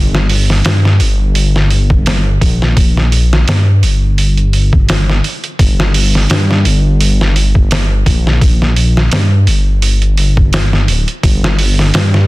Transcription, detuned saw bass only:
0.00 0.62 G1 loud
0.65 1.02 G2 medium
1.00 2.38 G1 medium
2.42 3.44 A#1 medium
3.48 3.84 G2 medium
3.83 5.21 G1 medium
5.59 6.27 G1 loud
6.30 6.66 G2 medium
6.65 8.03 G1 medium
8.06 9.09 A#1 medium
9.12 9.49 G2 medium
9.47 10.17 G1 medium
10.18 10.90 G1 medium
10.88 11.06 D1 medium
11.23 11.91 G1 medium
11.94 12.27 G2 medium

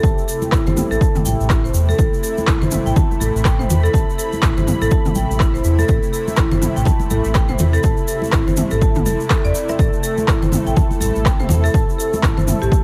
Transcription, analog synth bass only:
0.03 0.14 A1 loud
0.52 0.63 A1 medium
0.67 0.83 G1 loud
0.91 0.98 A1 medium
1.25 1.36 A1 medium
1.40 1.70 A1 medium
1.74 1.93 E2 medium
1.99 2.09 A1 loud
2.48 2.58 A1 medium
2.61 2.78 G1 loud
2.86 2.93 A1 medium
3.20 3.31 A1 medium
3.35 3.65 A1 medium
3.69 3.88 E2 medium
3.94 4.04 A1 loud
4.43 4.53 A1 medium
4.57 4.73 G1 medium
4.81 4.88 A1 medium
5.16 5.26 A1 medium
5.30 5.60 A1 medium
5.64 5.83 E2 medium
5.89 5.99 A1 loud
6.37 6.48 A1 medium
6.52 6.68 G1 loud
6.77 6.84 A1 medium
7.11 7.21 A1 medium
7.25 7.55 A1 medium
7.59 7.78 E2 medium
7.84 7.94 A1 loud
8.33 8.43 A1 medium
8.47 8.63 G1 loud
8.71 9.07 A1 medium
9.06 9.16 E1 medium
9.44 9.52 E2 medium
9.79 9.89 A1 medium
10.28 10.38 A1 medium
10.42 10.58 G1 loud
10.67 10.74 A1 medium
11.01 11.11 A1 medium
11.16 11.45 A1 medium
11.50 11.69 E2 medium
11.74 11.85 A1 medium
12.23 12.33 A1 medium
12.38 12.54 G1 medium
12.62 12.69 A1 medium

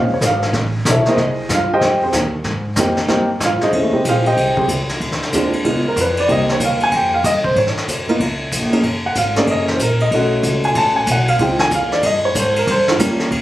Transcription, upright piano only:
0.00 0.11 F5 medium
0.14 0.23 C#5 medium
0.26 0.53 F5 medium
0.91 1.08 E4 medium
0.91 1.08 A4 medium
0.91 1.08 C#5 medium
0.91 1.08 E5 medium
1.07 1.17 A#3 medium
1.07 1.17 C4 medium
1.07 1.17 D#4 medium
1.07 1.48 G#4 medium
1.07 1.17 A#4 medium
1.07 1.48 C5 medium
1.07 1.48 D#5 medium
1.54 1.72 F4 medium
1.54 1.71 F5 loud
1.73 2.01 G4 medium
1.73 2.01 C5 medium
1.73 2.02 D#5 medium
1.73 2.01 G5 medium
2.03 2.14 C4 medium
2.03 2.14 G4 medium
2.03 2.14 G#4 soft
2.03 2.13 C5 medium
2.78 2.96 A#3 medium
2.78 2.96 C4 medium
2.78 2.96 D#4 medium
2.78 2.96 G4 medium
3.08 3.27 A#3 medium
3.08 3.27 C4 medium
3.08 3.27 D#4 medium
3.08 3.27 G4 medium
3.44 3.63 F4 medium
3.44 3.62 F5 medium
3.63 3.91 D#4 medium
3.63 3.72 G#4 medium
3.63 4.03 C5 medium
3.63 4.03 D#5 medium
3.73 3.91 A3 medium
3.73 3.91 C#4 soft
3.73 3.91 E4 medium
3.93 4.62 G#3 medium
3.93 4.57 C4 medium
3.93 4.61 D#4 medium
3.93 4.26 G4 medium
4.09 4.27 F4 medium
4.09 4.27 G#4 medium
4.09 4.26 C5 medium
4.09 4.27 F5 medium
4.27 4.56 G4 medium
4.27 4.56 C5 medium
4.27 4.56 D#5 medium
4.27 4.56 G5 medium
4.58 4.65 C4 medium
4.58 4.65 G4 medium
4.58 4.65 G#4 medium
4.58 4.65 C5 medium
5.34 5.52 G#3 medium
5.34 5.52 C4 medium
5.34 5.52 D4 medium
5.34 5.52 F4 medium
5.65 5.83 G#3 medium
5.65 5.83 B3 medium
5.65 5.83 D#4 medium
5.65 5.83 F4 medium
5.88 5.98 A#4 medium
6.01 6.19 B4 medium
6.20 6.30 D5 medium
6.27 7.17 A#3 medium
6.27 7.17 C4 soft
6.27 7.17 D#4 medium
6.27 7.17 G4 medium
6.32 6.50 D#5 medium
6.52 6.62 C#5 medium
6.65 6.82 F5 medium
6.83 6.93 G#5 loud
6.97 7.14 G5 medium
7.14 7.25 F5 medium
7.26 7.45 D#5 medium
7.44 7.55 C5 medium
7.58 8.17 C#5 medium
8.08 8.19 A#3 medium
8.08 8.19 B3 medium
8.08 8.19 D#4 medium
8.08 8.19 F4 medium
8.72 8.83 A#3 medium
8.72 8.83 C#4 medium
8.72 8.83 D#4 medium
8.72 8.83 G#4 medium
9.06 9.16 F#5 medium
9.17 9.36 F5 medium
9.37 9.78 A#3 medium
9.37 9.78 C#4 medium
9.37 9.78 D#4 medium
9.37 9.78 G#4 medium
9.37 9.48 D5 medium
9.51 9.69 D#5 loud
9.71 9.81 C5 medium
9.82 10.01 A#4 medium
10.02 10.31 D#5 medium
10.13 11.02 A3 medium
10.13 11.02 C#4 medium
10.13 11.02 D#4 medium
10.13 11.02 F#4 medium
10.65 10.76 G#5 medium
10.77 10.96 A5 loud
10.96 11.07 G#5 medium
11.11 11.29 F#5 medium
11.29 11.39 F5 medium
11.40 12.29 G#3 medium
11.40 12.29 C4 medium
11.40 12.29 D#4 medium
11.40 12.29 F4 medium
11.40 11.61 G5 medium
11.60 11.71 G#5 loud
11.75 11.93 F5 medium
11.92 12.03 D5 medium
12.06 12.25 D#5 medium
12.25 12.36 C#5 medium
12.39 12.57 C5 medium
12.59 12.68 A#4 medium
12.71 12.89 C5 medium
12.90 12.96 F4 medium
12.99 13.31 G3 medium
12.99 13.31 A#3 medium
12.99 13.31 C#4 medium
12.99 13.31 F4 medium

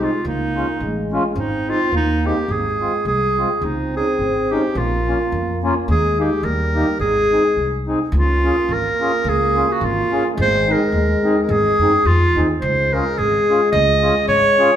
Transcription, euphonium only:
0.00 0.22 G#3 medium
0.25 0.77 A#3 medium
0.81 1.37 G#3 medium
1.36 1.93 C4 medium
1.92 2.48 A#3 loud
2.49 3.33 G#3 medium
3.63 4.78 C4 loud
4.77 5.90 A#3 medium
5.89 6.46 G#3 medium
6.45 7.00 G3 medium
7.00 7.84 G#3 medium
8.11 10.36 A#3 loud
10.35 12.35 G#3 loud
12.63 14.76 G#3 medium

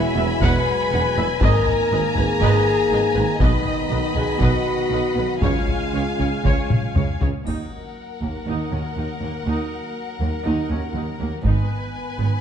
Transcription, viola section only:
0.17 0.25 B4 medium
0.17 0.25 E5 medium
0.42 0.66 B4 medium
0.42 0.66 F#5 medium
0.92 1.00 B4 medium
0.92 1.00 F#5 medium
1.18 1.27 B4 medium
1.18 1.26 E5 medium
1.43 1.66 B4 medium
1.43 1.66 D#5 medium
1.92 2.01 B4 medium
1.92 2.00 D#5 medium
2.16 2.24 B4 medium
2.41 2.65 B4 medium
2.41 2.65 D#5 medium
2.92 3.00 B4 medium
2.92 3.00 D#5 medium
3.16 3.24 B4 medium
3.41 3.65 B4 medium
3.41 3.65 D#5 medium
3.90 3.98 B4 soft
3.90 3.99 D#5 medium
4.16 4.24 B4 medium
4.41 4.64 B4 medium
4.41 4.64 D#5 medium
4.93 5.01 B4 medium
4.93 5.01 D#5 medium
5.17 5.25 B4 soft
5.43 5.67 C#5 medium
5.94 6.02 C#5 soft
6.19 6.27 G#4 soft
6.19 6.27 C#5 soft
6.46 6.69 C#5 medium
6.95 7.04 C#5 soft
7.21 7.29 G#4 soft
7.21 7.29 C#5 soft
7.47 7.70 D#4 soft
8.22 8.30 A#3 soft
8.47 8.70 D#4 soft
8.72 8.80 C#4 soft
8.97 9.05 D#4 soft
9.23 9.31 A#3 soft
9.47 9.69 D#4 soft
10.21 10.29 A#3 soft
10.45 10.68 D#4 medium
10.70 10.78 C#4 soft
10.96 11.04 D#4 soft
11.20 11.28 A#3 soft
11.45 11.68 D#4 soft
12.18 12.26 B3 soft

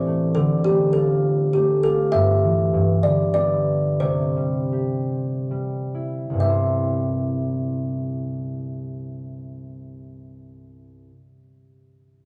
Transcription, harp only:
0.00 0.43 A2 medium
0.00 0.42 E3 soft
0.00 2.16 C4 soft
0.00 0.55 E4 soft
0.07 0.66 A3 soft
0.36 2.20 D3 medium
0.67 1.54 A3 soft
0.97 1.84 F4 soft
1.55 4.88 A3 soft
1.85 2.50 F4 soft
2.14 2.72 G2 medium
2.44 2.80 E3 soft
2.74 4.07 G2 medium
3.05 4.07 D3 soft
3.35 4.08 B3 soft
4.02 6.36 C3 medium
4.36 5.50 G3 soft
4.72 7.08 G4 soft
5.51 6.40 G3 soft
5.95 6.45 E4 soft
6.30 11.08 C2 soft
6.30 11.12 G2 soft
6.38 11.16 C3 soft
6.38 11.20 G3 soft
6.45 11.23 E4 soft
6.49 11.28 C5 soft

